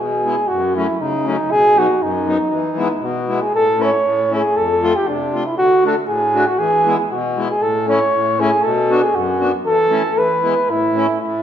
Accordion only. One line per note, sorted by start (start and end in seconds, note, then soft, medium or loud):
0.00 0.36 B2 medium
0.25 0.35 G#3 medium
0.25 0.35 B3 soft
0.25 0.36 E4 medium
0.49 0.87 F#2 medium
0.76 0.87 F#3 medium
0.76 0.87 A3 medium
0.76 0.87 C#4 medium
0.99 1.38 C#3 medium
1.25 1.36 F#3 medium
1.25 1.37 A3 medium
1.25 1.37 C#4 medium
1.49 1.88 B2 medium
1.76 1.87 F#3 medium
1.76 1.87 B3 medium
1.76 1.87 D#4 medium
2.00 2.38 F#2 medium
2.26 2.37 F#3 medium
2.26 2.38 B3 medium
2.26 2.38 D#4 medium
2.50 2.89 E3 medium
2.77 2.88 G#3 medium
2.77 2.88 B3 medium
2.77 2.88 E4 medium
3.00 3.40 B2 medium
3.29 3.40 G#3 medium
3.29 3.40 B3 soft
3.29 3.40 E4 medium
3.53 3.92 A2 medium
3.78 3.90 A3 medium
3.78 3.91 C#4 medium
3.78 3.91 E4 medium
4.03 4.42 A2 medium
4.31 4.42 A3 medium
4.31 4.42 C#4 medium
4.31 4.42 E4 medium
4.55 4.93 F2 medium
4.83 4.93 A3 medium
4.83 4.93 C4 medium
4.83 4.93 F4 medium
5.07 5.45 C3 medium
5.33 5.43 A3 medium
5.33 5.44 C4 medium
5.33 5.44 F4 medium
5.57 5.95 D3 medium
5.84 5.94 A3 medium
5.84 5.95 D4 medium
5.84 5.95 F#4 medium
6.07 6.46 A2 medium
6.33 6.45 A3 medium
6.33 6.45 D4 medium
6.33 6.45 F#4 medium
6.58 6.97 E3 medium
6.85 6.96 G#3 medium
6.85 6.97 B3 medium
6.85 6.97 E4 medium
7.11 7.50 B2 medium
7.37 7.48 G#3 soft
7.37 7.48 B3 soft
7.37 7.49 E4 medium
7.61 8.01 A2 medium
7.87 7.99 A3 medium
7.87 7.99 C#4 medium
7.87 8.00 E4 medium
8.13 8.52 A2 medium
8.39 8.51 A3 medium
8.39 8.51 C#4 soft
8.39 8.51 E4 medium
8.63 9.02 B2 medium
8.90 9.01 B3 medium
8.90 9.02 D4 medium
8.90 9.02 F#4 medium
9.13 9.53 F#2 medium
9.40 9.52 B3 medium
9.40 9.52 D4 medium
9.40 9.52 F#4 medium
9.64 10.04 E3 medium
9.90 10.02 A3 medium
9.90 10.03 C#4 medium
9.90 10.03 E4 medium
10.16 10.55 E3 medium
10.43 10.54 G#3 medium
10.43 10.54 B3 soft
10.43 10.54 E4 medium
10.68 11.07 A2 medium
10.95 11.06 A3 medium
10.95 11.07 C#4 medium
10.95 11.07 E4 medium
11.21 11.43 A2 medium